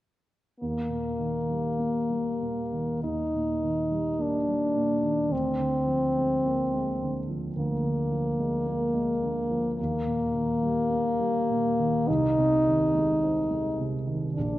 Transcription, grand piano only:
0.61 3.01 D#2 soft
0.90 1.37 A#2 soft
1.18 1.67 D#3 soft
1.50 1.98 G3 soft
1.79 2.28 A#3 soft
2.10 2.61 G3 soft
2.42 2.92 A#2 soft
2.73 3.22 D#3 soft
3.03 5.27 D#2 soft
3.35 3.80 A#2 soft
3.63 4.08 D#3 soft
3.92 4.36 G3 soft
4.19 4.64 A#3 soft
4.48 4.92 G3 soft
4.76 5.20 A#2 soft
5.02 5.31 D#3 soft
5.29 7.52 D2 soft
5.58 6.06 D3 soft
5.86 6.34 F3 soft
6.17 6.63 G#3 soft
6.46 6.91 A#3 soft
6.73 7.18 G#3 soft
7.02 7.46 D3 soft
7.29 7.73 F3 soft
7.56 9.74 D2 soft
7.84 8.28 D3 soft
8.11 8.55 F3 soft
8.40 8.84 G#3 soft
8.67 9.11 A#3 soft
8.94 9.39 G#3 soft
9.23 9.67 D3 soft
9.51 9.78 F3 soft
9.79 12.04 D#2 soft
10.06 10.49 A#2 soft
10.34 10.77 D#3 soft
10.61 11.06 G3 soft
10.90 11.36 A#3 soft
11.19 11.67 G3 soft
11.50 11.97 A#2 soft
11.79 12.08 D#3 soft
12.10 14.33 C2 soft
12.38 12.82 C3 soft
12.68 13.11 D#3 soft
12.95 13.38 G#3 soft
13.23 13.67 C4 soft
13.50 13.95 G#3 soft
13.79 14.25 C3 soft
14.07 14.36 D#3 soft
14.38 14.59 A#1 soft

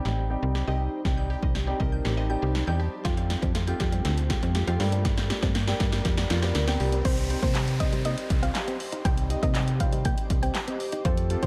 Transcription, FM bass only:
0.05 0.36 A1 medium
0.43 0.63 C2 medium
0.68 0.89 C2 medium
1.05 1.36 C2 loud
1.43 1.74 C2 medium
1.80 2.01 C2 loud
2.05 2.36 A1 loud
2.42 2.63 C2 medium
2.67 2.88 E2 medium
3.05 3.36 F2 loud
3.43 3.74 F2 medium
3.80 4.01 F2 loud
4.05 4.36 D2 loud
4.43 4.63 F2 medium
4.67 4.78 F2 medium
4.80 5.32 G2 loud
5.43 5.74 G2 loud
5.80 6.01 G2 loud
6.05 6.26 F2 loud
6.30 6.53 F2 medium
6.55 6.78 D2 medium
6.80 7.03 C2 medium
7.05 7.36 C2 loud
7.43 8.16 C3 medium
8.30 8.51 C2 loud
9.05 9.36 C2 loud
9.43 10.16 C3 medium
10.30 10.51 C2 loud
11.05 11.36 F2 loud
11.43 11.47 F3 medium

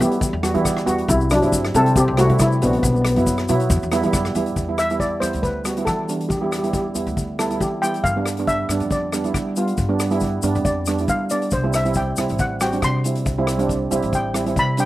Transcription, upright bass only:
0.00 0.31 E3 loud
0.33 0.54 E2 loud
0.55 0.85 E3 loud
0.87 1.07 E2 medium
1.08 1.40 C2 loud
1.42 1.72 G2 medium
1.74 2.05 C3 loud
2.08 2.28 C2 loud
2.30 2.59 C3 medium
2.63 2.82 A#1 loud
2.83 3.14 B1 loud
3.18 3.47 F#2 medium
3.50 3.69 B2 loud
3.70 3.81 E2 loud
3.83 4.02 E2 loud
4.04 4.13 E3 medium
4.13 4.33 F#2 medium
4.35 4.55 E2 medium
4.56 5.18 E2 medium
5.22 5.33 E2 medium
5.34 5.84 D2 medium
5.87 6.28 E3 loud
6.30 6.92 E2 medium
6.95 7.06 E2 medium
7.07 7.57 D2 medium
7.60 8.01 E3 medium
8.04 8.66 G2 medium
8.69 8.79 G2 medium
8.80 9.31 F2 medium
9.34 9.75 G3 loud
9.78 10.40 G2 medium
10.43 10.54 G2 medium
10.55 11.05 F2 medium
11.08 11.49 G3 medium
11.52 12.14 C2 medium
12.18 12.29 C2 medium
12.30 12.80 A1 medium
12.82 13.23 C3 medium
13.26 13.88 C2 medium
13.92 14.02 C2 medium
14.03 14.53 A1 medium
14.56 14.85 C3 medium

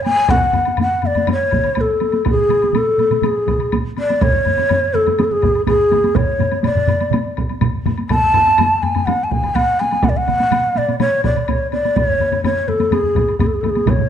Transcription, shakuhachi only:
0.05 0.32 G#5 loud
0.30 0.79 F#5 medium
0.81 1.07 F#5 medium
1.06 1.29 D5 medium
1.32 1.82 C#5 medium
1.81 2.28 A4 medium
2.29 2.78 G#4 medium
2.77 3.27 A4 medium
3.25 3.74 G#4 medium
3.99 4.24 D5 medium
4.22 4.96 C#5 loud
4.94 5.20 A4 medium
5.19 5.26 G#4 medium
5.24 5.33 A4 medium
5.32 5.66 G#4 medium
5.67 6.17 G#4 medium
6.15 6.63 C#5 medium
6.64 7.33 D5 medium
8.09 8.84 A5 medium
8.82 9.07 G#5 medium
9.06 9.25 F#5 medium
9.24 9.33 A5 medium
9.31 9.57 G#5 medium
9.55 9.81 F#5 medium
9.80 10.06 G#5 medium
10.04 10.11 F#5 medium
10.09 10.18 D5 medium
10.17 10.79 F#5 medium
10.77 10.99 D5 medium
11.00 11.22 C#5 medium
11.24 11.51 D5 medium
11.49 11.71 C#5 medium
11.72 11.98 D5 medium
11.96 12.44 C#5 medium
12.45 12.70 C#5 medium
12.68 12.94 A4 medium
12.92 13.38 G#4 medium
13.39 13.48 G#4 medium
13.46 13.55 A4 medium
13.54 13.62 G#4 medium
13.61 13.71 A4 medium
13.70 13.90 G#4 medium
13.89 14.09 C#5 medium

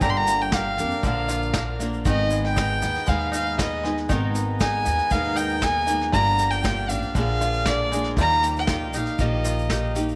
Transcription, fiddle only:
0.02 0.11 A#5 loud
0.10 0.19 C6 medium
0.17 0.43 A#5 loud
0.42 0.56 G5 medium
0.55 1.05 F5 medium
1.07 1.78 F5 medium
2.10 2.44 D#5 loud
2.46 3.11 G5 loud
3.09 3.34 F5 medium
3.35 3.58 F5 medium
3.59 3.95 D#5 medium
4.61 5.13 G#5 loud
5.12 5.38 F5 loud
5.37 5.65 G5 loud
5.63 6.01 G#5 loud
6.13 6.52 A#5 loud
6.51 6.91 G5 loud
6.89 7.15 F5 medium
7.16 7.69 F5 medium
7.67 8.05 D5 medium
8.21 8.55 A#5 loud
8.59 8.93 G5 medium
8.97 9.23 F5 medium
9.21 9.97 D#5 medium

